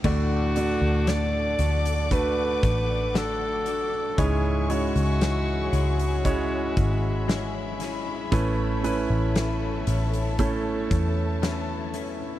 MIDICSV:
0, 0, Header, 1, 7, 480
1, 0, Start_track
1, 0, Tempo, 1034483
1, 20, Time_signature, 4, 2, 24, 8
1, 5749, End_track
2, 0, Start_track
2, 0, Title_t, "String section"
2, 0, Program_c, 0, 48
2, 21, Note_on_c, 0, 86, 75
2, 22, Note_on_c, 0, 69, 64
2, 22, Note_on_c, 0, 74, 62
2, 23, Note_on_c, 0, 78, 57
2, 1922, Note_off_c, 0, 86, 0
2, 1923, Note_off_c, 0, 69, 0
2, 1923, Note_off_c, 0, 74, 0
2, 1923, Note_off_c, 0, 78, 0
2, 1939, Note_on_c, 0, 85, 75
2, 1940, Note_on_c, 0, 68, 64
2, 1940, Note_on_c, 0, 73, 59
2, 1940, Note_on_c, 0, 76, 58
2, 2890, Note_off_c, 0, 85, 0
2, 2899, Note_on_c, 0, 83, 69
2, 3842, Note_off_c, 0, 68, 0
2, 3842, Note_off_c, 0, 73, 0
2, 3857, Note_on_c, 0, 69, 66
2, 3857, Note_on_c, 0, 73, 65
2, 4801, Note_off_c, 0, 83, 0
2, 4823, Note_on_c, 0, 81, 74
2, 5749, Note_off_c, 0, 69, 0
2, 5749, Note_off_c, 0, 73, 0
2, 5749, Note_off_c, 0, 76, 0
2, 5749, Note_off_c, 0, 81, 0
2, 5749, End_track
3, 0, Start_track
3, 0, Title_t, "Alto saxophone"
3, 0, Program_c, 1, 65
3, 28, Note_on_c, 1, 66, 91
3, 508, Note_on_c, 1, 74, 93
3, 515, Note_off_c, 1, 66, 0
3, 989, Note_on_c, 1, 71, 88
3, 996, Note_off_c, 1, 74, 0
3, 1473, Note_on_c, 1, 69, 88
3, 1480, Note_off_c, 1, 71, 0
3, 1948, Note_on_c, 1, 68, 80
3, 1955, Note_off_c, 1, 69, 0
3, 2186, Note_on_c, 1, 66, 79
3, 2193, Note_off_c, 1, 68, 0
3, 3623, Note_off_c, 1, 66, 0
3, 5749, End_track
4, 0, Start_track
4, 0, Title_t, "Grand piano"
4, 0, Program_c, 2, 0
4, 0, Control_c, 2, 64, 127
4, 21, Note_on_c, 2, 45, 62
4, 21, Note_on_c, 2, 57, 69
4, 21, Note_on_c, 2, 62, 62
4, 23, Note_on_c, 2, 66, 62
4, 24, Note_on_c, 2, 74, 72
4, 26, Control_c, 2, 64, 0
4, 122, Control_c, 2, 64, 127
4, 249, Note_off_c, 2, 57, 0
4, 249, Note_off_c, 2, 62, 0
4, 250, Note_off_c, 2, 66, 0
4, 250, Note_off_c, 2, 74, 0
4, 263, Note_on_c, 2, 57, 57
4, 263, Note_on_c, 2, 66, 53
4, 264, Note_on_c, 2, 62, 56
4, 266, Note_on_c, 2, 74, 69
4, 722, Note_off_c, 2, 45, 0
4, 946, Note_off_c, 2, 57, 0
4, 946, Note_off_c, 2, 62, 0
4, 946, Note_off_c, 2, 66, 0
4, 947, Note_off_c, 2, 74, 0
4, 980, Note_on_c, 2, 57, 62
4, 981, Note_on_c, 2, 62, 60
4, 982, Note_on_c, 2, 66, 59
4, 982, Note_on_c, 2, 71, 77
4, 1892, Note_off_c, 2, 57, 0
4, 1893, Note_off_c, 2, 62, 0
4, 1893, Note_off_c, 2, 66, 0
4, 1893, Note_off_c, 2, 71, 0
4, 1940, Note_on_c, 2, 44, 67
4, 1940, Note_on_c, 2, 56, 68
4, 1941, Note_on_c, 2, 64, 69
4, 1942, Note_on_c, 2, 61, 62
4, 1943, Note_on_c, 2, 73, 78
4, 1946, Control_c, 2, 64, 0
4, 2042, Control_c, 2, 64, 127
4, 2168, Note_off_c, 2, 56, 0
4, 2169, Note_off_c, 2, 61, 0
4, 2169, Note_off_c, 2, 64, 0
4, 2170, Note_off_c, 2, 73, 0
4, 2178, Note_on_c, 2, 56, 61
4, 2178, Note_on_c, 2, 61, 59
4, 2180, Note_on_c, 2, 64, 56
4, 2180, Note_on_c, 2, 73, 68
4, 2642, Note_off_c, 2, 44, 0
4, 2863, Note_off_c, 2, 56, 0
4, 2863, Note_off_c, 2, 61, 0
4, 2864, Note_off_c, 2, 64, 0
4, 2864, Note_off_c, 2, 73, 0
4, 2900, Note_on_c, 2, 56, 78
4, 2901, Note_on_c, 2, 61, 72
4, 2902, Note_on_c, 2, 64, 66
4, 2903, Note_on_c, 2, 73, 83
4, 3812, Note_off_c, 2, 56, 0
4, 3813, Note_off_c, 2, 61, 0
4, 3813, Note_off_c, 2, 64, 0
4, 3814, Note_off_c, 2, 73, 0
4, 3859, Note_on_c, 2, 57, 85
4, 3861, Note_on_c, 2, 61, 83
4, 3862, Note_on_c, 2, 64, 81
4, 3862, Note_on_c, 2, 71, 89
4, 3866, Control_c, 2, 64, 0
4, 3951, Control_c, 2, 64, 127
4, 4088, Note_off_c, 2, 57, 0
4, 4089, Note_off_c, 2, 61, 0
4, 4089, Note_off_c, 2, 64, 0
4, 4089, Note_off_c, 2, 71, 0
4, 4101, Note_on_c, 2, 57, 72
4, 4102, Note_on_c, 2, 61, 72
4, 4103, Note_on_c, 2, 64, 70
4, 4104, Note_on_c, 2, 71, 90
4, 4785, Note_off_c, 2, 57, 0
4, 4785, Note_off_c, 2, 61, 0
4, 4786, Note_off_c, 2, 64, 0
4, 4786, Note_off_c, 2, 71, 0
4, 4821, Note_on_c, 2, 57, 80
4, 4823, Note_on_c, 2, 61, 73
4, 4823, Note_on_c, 2, 64, 72
4, 4825, Note_on_c, 2, 69, 86
4, 5733, Note_off_c, 2, 57, 0
4, 5734, Note_off_c, 2, 61, 0
4, 5734, Note_off_c, 2, 64, 0
4, 5735, Note_off_c, 2, 69, 0
4, 5749, End_track
5, 0, Start_track
5, 0, Title_t, "Clean electric guitar"
5, 0, Program_c, 3, 27
5, 19, Note_on_c, 3, 50, 70
5, 22, Note_on_c, 3, 57, 70
5, 24, Note_on_c, 3, 62, 73
5, 25, Note_on_c, 3, 66, 73
5, 252, Note_off_c, 3, 66, 0
5, 258, Note_off_c, 3, 62, 0
5, 258, Note_on_c, 3, 66, 46
5, 260, Note_off_c, 3, 50, 0
5, 261, Note_off_c, 3, 57, 0
5, 263, Note_on_c, 3, 62, 43
5, 267, Note_on_c, 3, 57, 36
5, 497, Note_off_c, 3, 57, 0
5, 499, Note_off_c, 3, 66, 0
5, 499, Note_on_c, 3, 50, 50
5, 500, Note_off_c, 3, 62, 0
5, 503, Note_on_c, 3, 57, 43
5, 506, Note_on_c, 3, 62, 57
5, 508, Note_on_c, 3, 66, 52
5, 733, Note_off_c, 3, 66, 0
5, 739, Note_off_c, 3, 62, 0
5, 739, Note_on_c, 3, 66, 51
5, 740, Note_off_c, 3, 50, 0
5, 742, Note_off_c, 3, 57, 0
5, 744, Note_on_c, 3, 62, 46
5, 746, Note_on_c, 3, 57, 38
5, 1456, Note_off_c, 3, 57, 0
5, 1458, Note_off_c, 3, 62, 0
5, 1458, Note_on_c, 3, 50, 50
5, 1460, Note_off_c, 3, 66, 0
5, 1462, Note_on_c, 3, 57, 52
5, 1464, Note_on_c, 3, 62, 55
5, 1467, Note_on_c, 3, 66, 57
5, 1692, Note_off_c, 3, 66, 0
5, 1697, Note_off_c, 3, 62, 0
5, 1697, Note_on_c, 3, 66, 47
5, 1699, Note_off_c, 3, 50, 0
5, 1701, Note_off_c, 3, 57, 0
5, 1702, Note_on_c, 3, 62, 46
5, 1707, Note_on_c, 3, 57, 37
5, 1938, Note_on_c, 3, 49, 67
5, 1939, Note_off_c, 3, 57, 0
5, 1939, Note_off_c, 3, 66, 0
5, 1940, Note_on_c, 3, 52, 74
5, 1941, Note_off_c, 3, 62, 0
5, 1941, Note_on_c, 3, 56, 67
5, 1943, Note_on_c, 3, 61, 78
5, 1944, Note_on_c, 3, 64, 78
5, 2174, Note_off_c, 3, 64, 0
5, 2178, Note_off_c, 3, 61, 0
5, 2179, Note_off_c, 3, 49, 0
5, 2180, Note_off_c, 3, 52, 0
5, 2180, Note_on_c, 3, 64, 47
5, 2181, Note_off_c, 3, 56, 0
5, 2184, Note_on_c, 3, 61, 43
5, 2188, Note_on_c, 3, 56, 41
5, 2417, Note_off_c, 3, 56, 0
5, 2419, Note_on_c, 3, 52, 54
5, 2420, Note_off_c, 3, 61, 0
5, 2420, Note_off_c, 3, 64, 0
5, 2422, Note_on_c, 3, 56, 48
5, 2425, Note_on_c, 3, 61, 52
5, 2428, Note_on_c, 3, 64, 59
5, 2653, Note_off_c, 3, 64, 0
5, 2658, Note_off_c, 3, 61, 0
5, 2658, Note_on_c, 3, 64, 52
5, 2660, Note_off_c, 3, 52, 0
5, 2661, Note_off_c, 3, 56, 0
5, 2664, Note_on_c, 3, 61, 45
5, 2668, Note_on_c, 3, 56, 44
5, 3375, Note_off_c, 3, 56, 0
5, 3377, Note_on_c, 3, 52, 60
5, 3380, Note_on_c, 3, 56, 70
5, 3381, Note_off_c, 3, 61, 0
5, 3383, Note_on_c, 3, 61, 60
5, 3385, Note_off_c, 3, 64, 0
5, 3386, Note_on_c, 3, 64, 80
5, 3615, Note_off_c, 3, 64, 0
5, 3619, Note_off_c, 3, 52, 0
5, 3619, Note_off_c, 3, 61, 0
5, 3620, Note_off_c, 3, 56, 0
5, 3620, Note_on_c, 3, 64, 54
5, 3625, Note_on_c, 3, 61, 49
5, 3629, Note_on_c, 3, 56, 43
5, 3860, Note_off_c, 3, 61, 0
5, 3860, Note_off_c, 3, 64, 0
5, 3861, Note_off_c, 3, 56, 0
5, 3861, Note_on_c, 3, 45, 73
5, 3862, Note_on_c, 3, 52, 88
5, 3863, Note_on_c, 3, 59, 88
5, 3865, Note_on_c, 3, 61, 83
5, 3867, Note_on_c, 3, 64, 84
5, 4094, Note_off_c, 3, 64, 0
5, 4099, Note_off_c, 3, 61, 0
5, 4100, Note_on_c, 3, 64, 51
5, 4101, Note_off_c, 3, 45, 0
5, 4101, Note_off_c, 3, 52, 0
5, 4102, Note_off_c, 3, 59, 0
5, 4104, Note_on_c, 3, 61, 47
5, 4108, Note_on_c, 3, 59, 44
5, 4337, Note_off_c, 3, 59, 0
5, 4340, Note_off_c, 3, 64, 0
5, 4340, Note_on_c, 3, 52, 54
5, 4341, Note_off_c, 3, 61, 0
5, 4343, Note_on_c, 3, 59, 67
5, 4346, Note_on_c, 3, 61, 66
5, 4349, Note_on_c, 3, 64, 64
5, 4574, Note_off_c, 3, 64, 0
5, 4579, Note_off_c, 3, 61, 0
5, 4580, Note_off_c, 3, 52, 0
5, 4580, Note_on_c, 3, 64, 53
5, 4582, Note_off_c, 3, 59, 0
5, 4585, Note_on_c, 3, 61, 51
5, 4589, Note_on_c, 3, 59, 41
5, 5300, Note_off_c, 3, 61, 0
5, 5300, Note_on_c, 3, 52, 59
5, 5301, Note_off_c, 3, 59, 0
5, 5303, Note_on_c, 3, 59, 59
5, 5306, Note_on_c, 3, 61, 62
5, 5307, Note_off_c, 3, 64, 0
5, 5309, Note_on_c, 3, 64, 64
5, 5534, Note_off_c, 3, 64, 0
5, 5540, Note_off_c, 3, 52, 0
5, 5540, Note_off_c, 3, 61, 0
5, 5540, Note_on_c, 3, 64, 53
5, 5542, Note_off_c, 3, 59, 0
5, 5546, Note_on_c, 3, 61, 47
5, 5549, Note_on_c, 3, 59, 44
5, 5749, Note_off_c, 3, 59, 0
5, 5749, Note_off_c, 3, 61, 0
5, 5749, Note_off_c, 3, 64, 0
5, 5749, End_track
6, 0, Start_track
6, 0, Title_t, "Fingered electric bass"
6, 0, Program_c, 4, 33
6, 20, Note_on_c, 4, 38, 89
6, 362, Note_off_c, 4, 38, 0
6, 378, Note_on_c, 4, 38, 73
6, 720, Note_off_c, 4, 38, 0
6, 738, Note_on_c, 4, 38, 85
6, 1201, Note_off_c, 4, 38, 0
6, 1222, Note_on_c, 4, 33, 67
6, 1922, Note_off_c, 4, 33, 0
6, 1940, Note_on_c, 4, 37, 89
6, 2282, Note_off_c, 4, 37, 0
6, 2300, Note_on_c, 4, 37, 88
6, 2642, Note_off_c, 4, 37, 0
6, 2657, Note_on_c, 4, 37, 91
6, 3141, Note_on_c, 4, 32, 67
6, 3148, Note_off_c, 4, 37, 0
6, 3842, Note_off_c, 4, 32, 0
6, 3861, Note_on_c, 4, 33, 100
6, 4202, Note_off_c, 4, 33, 0
6, 4223, Note_on_c, 4, 33, 92
6, 4563, Note_off_c, 4, 33, 0
6, 4581, Note_on_c, 4, 33, 87
6, 5042, Note_off_c, 4, 33, 0
6, 5062, Note_on_c, 4, 40, 72
6, 5749, Note_off_c, 4, 40, 0
6, 5749, End_track
7, 0, Start_track
7, 0, Title_t, "Drums"
7, 18, Note_on_c, 9, 49, 83
7, 20, Note_on_c, 9, 36, 93
7, 65, Note_off_c, 9, 49, 0
7, 66, Note_off_c, 9, 36, 0
7, 259, Note_on_c, 9, 42, 68
7, 305, Note_off_c, 9, 42, 0
7, 497, Note_on_c, 9, 42, 63
7, 500, Note_on_c, 9, 38, 79
7, 544, Note_off_c, 9, 42, 0
7, 546, Note_off_c, 9, 38, 0
7, 736, Note_on_c, 9, 42, 64
7, 783, Note_off_c, 9, 42, 0
7, 861, Note_on_c, 9, 42, 48
7, 907, Note_off_c, 9, 42, 0
7, 980, Note_on_c, 9, 36, 72
7, 980, Note_on_c, 9, 42, 65
7, 1026, Note_off_c, 9, 36, 0
7, 1027, Note_off_c, 9, 42, 0
7, 1221, Note_on_c, 9, 36, 89
7, 1221, Note_on_c, 9, 42, 62
7, 1267, Note_off_c, 9, 36, 0
7, 1268, Note_off_c, 9, 42, 0
7, 1462, Note_on_c, 9, 42, 62
7, 1463, Note_on_c, 9, 38, 93
7, 1509, Note_off_c, 9, 42, 0
7, 1510, Note_off_c, 9, 38, 0
7, 1698, Note_on_c, 9, 42, 59
7, 1744, Note_off_c, 9, 42, 0
7, 1940, Note_on_c, 9, 36, 97
7, 1941, Note_on_c, 9, 42, 84
7, 1987, Note_off_c, 9, 36, 0
7, 1987, Note_off_c, 9, 42, 0
7, 2180, Note_on_c, 9, 42, 68
7, 2226, Note_off_c, 9, 42, 0
7, 2300, Note_on_c, 9, 42, 43
7, 2346, Note_off_c, 9, 42, 0
7, 2419, Note_on_c, 9, 42, 68
7, 2422, Note_on_c, 9, 38, 93
7, 2466, Note_off_c, 9, 42, 0
7, 2468, Note_off_c, 9, 38, 0
7, 2659, Note_on_c, 9, 42, 69
7, 2705, Note_off_c, 9, 42, 0
7, 2781, Note_on_c, 9, 42, 50
7, 2828, Note_off_c, 9, 42, 0
7, 2899, Note_on_c, 9, 42, 71
7, 2900, Note_on_c, 9, 36, 69
7, 2946, Note_off_c, 9, 42, 0
7, 2947, Note_off_c, 9, 36, 0
7, 3140, Note_on_c, 9, 42, 61
7, 3141, Note_on_c, 9, 36, 86
7, 3187, Note_off_c, 9, 42, 0
7, 3188, Note_off_c, 9, 36, 0
7, 3384, Note_on_c, 9, 42, 67
7, 3385, Note_on_c, 9, 38, 101
7, 3430, Note_off_c, 9, 42, 0
7, 3431, Note_off_c, 9, 38, 0
7, 3619, Note_on_c, 9, 42, 67
7, 3626, Note_on_c, 9, 38, 34
7, 3665, Note_off_c, 9, 42, 0
7, 3672, Note_off_c, 9, 38, 0
7, 3861, Note_on_c, 9, 36, 102
7, 3862, Note_on_c, 9, 42, 76
7, 3907, Note_off_c, 9, 36, 0
7, 3908, Note_off_c, 9, 42, 0
7, 4103, Note_on_c, 9, 42, 68
7, 4150, Note_off_c, 9, 42, 0
7, 4341, Note_on_c, 9, 42, 68
7, 4343, Note_on_c, 9, 38, 91
7, 4387, Note_off_c, 9, 42, 0
7, 4390, Note_off_c, 9, 38, 0
7, 4580, Note_on_c, 9, 42, 74
7, 4626, Note_off_c, 9, 42, 0
7, 4702, Note_on_c, 9, 42, 48
7, 4749, Note_off_c, 9, 42, 0
7, 4819, Note_on_c, 9, 42, 68
7, 4821, Note_on_c, 9, 36, 68
7, 4866, Note_off_c, 9, 42, 0
7, 4867, Note_off_c, 9, 36, 0
7, 5062, Note_on_c, 9, 36, 90
7, 5062, Note_on_c, 9, 42, 61
7, 5108, Note_off_c, 9, 42, 0
7, 5109, Note_off_c, 9, 36, 0
7, 5303, Note_on_c, 9, 42, 75
7, 5304, Note_on_c, 9, 38, 91
7, 5349, Note_off_c, 9, 42, 0
7, 5350, Note_off_c, 9, 38, 0
7, 5539, Note_on_c, 9, 42, 59
7, 5585, Note_off_c, 9, 42, 0
7, 5749, End_track
0, 0, End_of_file